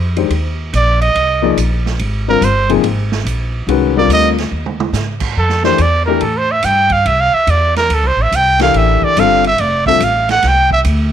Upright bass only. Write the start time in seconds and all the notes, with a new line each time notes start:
Already playing: F2
0.30 D#2
0.73 A#1
1.15 C2
1.57 A#1
1.99 G#1
2.41 G1
2.83 G#1
3.24 A#1
3.67 C2
4.08 D2
4.51 D#2
4.93 G#2
5.37 F2
5.79 E2
6.21 A2
6.64 G2
7.05 C2
7.47 E2
7.89 D2
8.03 C2
8.16 A1
8.32 C2
8.74 A1
9.16 G1
9.59 F1
10.00 A1
10.43 C2
10.85 D2